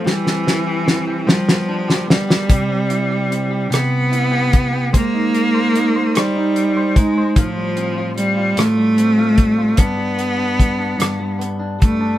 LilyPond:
<<
  \new Staff \with { instrumentName = "Clean electric guitar" } { \time 6/8 \key c \major \tempo 4. = 49 <g g'>16 c'16 e'16 g'16 c'16 g'16 <g g'>16 b16 d'16 g'16 b16 g'16 | <c g'>16 c'16 e'16 g'16 c'16 g'16 <c g'>8 e'16 g'8 g'16 | <aes c''>16 ees'8 c''16 ees'16 c''16 c''16 ees'8 c''16 ees'16 c''16 | <a, f'>16 g16 c'16 f'16 g16 f'16 <a, f'>16 g16 c'16 f'16 g16 f'16 |
<g, d'>16 g16 b16 d'16 g16 d'16 <g, d'>16 g16 b16 d'16 g16 d'16 | }
  \new Staff \with { instrumentName = "Cello" } { \clef bass \time 6/8 \key c \major e4. f4 g8~ | g4. b4. | bes4. g4 aes8 | f4 g8 a4. |
b2 r8 a8 | }
  \new DrumStaff \with { instrumentName = "Drums" } \drummode { \time 6/8 sn16 sn16 sn8 sn8 sn16 sn8 sn16 sn16 sn16 | <hh bd>8 hh8 hh8 <hh ss>8 hh8 <hh bd>8 | <hh bd>8 hh8 hh8 <hh ss>8 hh8 <hh bd>8 | <hh bd>8 hh8 hh8 <hh ss>8 hh8 <hh bd>8 |
<hh bd>8 hh8 <hh bd>8 <hh ss>8 hh8 <hh bd>8 | }
>>